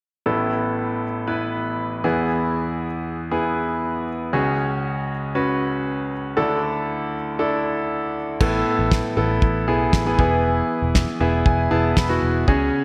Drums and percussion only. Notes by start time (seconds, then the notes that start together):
8.40 kick, crash
8.92 kick, snare
9.42 kick
9.93 kick, snare
10.19 kick
10.95 kick, snare
11.46 kick
11.97 kick, snare
12.48 kick